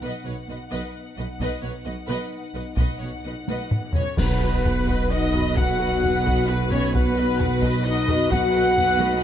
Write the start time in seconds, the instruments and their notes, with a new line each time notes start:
Already playing: french horn section B3 D#4, violin section F#5
0.02 double bass section B1, tuba B1, cello section B2, viola section B4, violin section D#5
0.25 double bass section B1, tuba B1, cello section B2, viola section B4, violin section C#5
0.48 double bass section B1, tuba B1, cello section B2, viola section B4, violin section D#5
0.71 double bass section B1, tuba B1, cello section B2, viola section B4, violin section D#5
1.17 tuba B1, double bass section B1, cello section B2, viola section B4, violin section D#5
1.39 tuba B1, double bass section B1, cello section B2, viola section B4, violin section D#5, taiko
1.62 double bass section B1, tuba B1, cello section B2, viola section B4, violin section C#5
1.85 tuba B1, double bass section B1, cello section B2, viola section B4, violin section D#5
2.07 tuba B1, double bass section B1, cello section B2, viola section B4, violin section D#5
2.54 double bass section B1, tuba B1, cello section B2, viola section B4, violin section D#5
2.77 double bass section B1, tuba B1, cello section B2, french horn section B3 D#4, viola section B4, violin section D#5 F#5, taiko
3.00 double bass section B1, tuba B1, cello section B2, viola section B4, violin section C#5
3.24 double bass section B1, tuba B1, cello section B2, viola section B4, violin section D#5
3.48 double bass section B1, tuba B1, cello section B2, viola section B4, violin section D#5, taiko high
3.71 taiko low-mid
3.94 double bass section B1, tuba B1, cello section B2, french horn section C#4, viola section B4, flute C#5, trumpet section C#5, violin section C#5 D#5, taiko low
4.17 double bass section B1, tuba B1, timpani B2, cello section B2, french horn section B3, viola section F#4 B4, flute B4, trumpet section B4, violin section B4 F#5, concert bass drum, taiko, crash
4.41 viola section F#4 B4, violin section D#5 B5
4.64 viola section F#4 B4, violin section F#5, taiko low
4.87 viola section F#4 B4, violin section D#5 B5, taiko
5.10 french horn section D#4, viola section F#4 B4, trumpet section D#5, flute D#5, violin section D#5 F#5
5.33 viola section F#4 B4, violin section D#5 B5, taiko low
5.56 french horn section F#4, viola section F#4 B4, trumpet section F#5, violin section F#5, flute F#5, taiko
5.79 viola section F#4 B4, violin section D#5 B5
6.03 viola section F#4 B4, violin section F#5, taiko low
6.25 viola section F#4 B4, violin section D#5 B5, taiko
6.48 french horn section B3, viola section F#4 B4, flute B4, trumpet section B4, violin section B4 F#5
6.71 french horn section C#4, viola section F#4 B4, flute C#5, violin section C#5 D#5 B5, trumpet section C#5, taiko low
6.94 french horn section B3, viola section F#4 B4, violin section B4 F#5, trumpet section B4, flute B4, taiko
7.17 viola section F#4 B4, violin section D#5 B5
7.40 viola section F#4 B4, violin section F#5, taiko low
7.61 viola section F#4 B4, violin section D#5 B5, taiko
7.85 french horn section D#4, viola section F#4 B4, trumpet section D#5, violin section D#5 F#5, flute D#5
8.08 viola section F#4 B4, violin section D#5 B5, taiko low
8.30 double bass section B1, tuba B1, cello section B2, french horn section F#4, viola section F#4 B4, trumpet section F#5, flute F#5, violin section F#5, taiko
8.53 viola section F#4 B4, violin section D#5 B5
8.76 viola section F#4 B4, violin section F#5, taiko low
8.99 viola section F#4 B4, violin section D#5 B5, taiko high